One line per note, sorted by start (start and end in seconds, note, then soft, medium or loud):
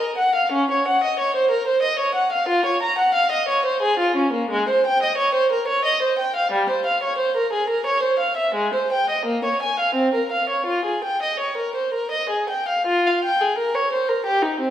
0.00 0.17 A#4 soft
0.18 0.34 F#5 medium
0.35 0.52 F5 medium
0.52 0.69 C#4 medium
0.71 0.87 C#5 soft
0.88 1.03 F#5 medium
1.04 1.19 D#5 medium
1.19 1.35 C#5 medium
1.36 1.52 C5 medium
1.51 1.67 A#4 medium
1.67 1.84 C5 medium
1.82 1.99 D#5 medium
1.99 2.16 C#5 medium
2.15 2.32 F#5 medium
2.32 2.49 F5 medium
2.48 2.65 F4 medium
2.66 2.82 C#5 medium
2.83 2.99 A#5 medium
2.98 3.15 F#5 medium
3.14 3.31 F5 medium
3.32 3.48 D#5 medium
3.48 3.65 C#5 medium
3.66 3.82 C5 medium
3.82 3.98 G#4 medium
3.99 4.16 F4 medium
4.16 4.33 C#4 medium
4.33 4.50 A#3 medium
4.50 4.68 G#3 medium
4.69 4.85 C5 medium
4.86 5.02 G5 medium
5.03 5.19 D#5 medium
5.18 5.34 C#5 medium
5.35 5.51 C5 medium
5.52 5.68 A#4 medium
5.68 5.85 C#5 medium
5.85 6.01 D#5 medium
6.02 6.19 C5 medium
6.19 6.35 G5 medium
6.36 6.52 F5 medium
6.52 6.68 G3 medium
6.70 6.85 C5 medium
6.86 7.02 F5 medium
7.03 7.19 C#5 medium
7.18 7.35 C5 medium
7.36 7.52 A#4 medium
7.53 7.69 G#4 medium
7.69 7.86 A#4 medium
7.86 8.02 C#5 medium
8.03 8.19 C5 medium
8.19 8.37 F5 medium
8.37 8.55 E5 medium
8.55 8.73 G#3 medium
8.74 8.92 C5 soft
8.92 9.09 G5 medium
9.10 9.27 D#5 medium
9.26 9.43 A#3 medium
9.45 9.61 C#5 medium
9.62 9.79 G#5 medium
9.80 9.96 F5 medium
9.95 10.12 C4 medium
10.14 10.31 A#4 soft
10.32 10.49 F5 soft
10.49 10.67 C#5 soft
10.66 10.85 F4 medium
10.85 11.03 G#4 soft
11.04 11.22 G5 soft
11.23 11.41 D#5 soft
11.40 11.58 C#5 soft
11.57 11.76 A#4 soft
11.75 11.94 C5 soft
11.94 12.12 A#4 medium
12.11 12.30 D#5 medium
12.30 12.49 G#4 soft
12.49 12.68 G5 soft
12.68 12.87 F5 soft
12.87 13.05 F4 medium
13.07 13.24 F5 medium
13.24 13.41 G5 medium
13.41 13.59 G#4 medium
13.58 13.75 A#4 medium
13.75 13.92 C#5 medium
13.93 14.09 C5 medium
14.09 14.26 A#4 medium
14.26 14.43 G4 medium
14.42 14.60 D#4 medium
14.60 14.70 C4 soft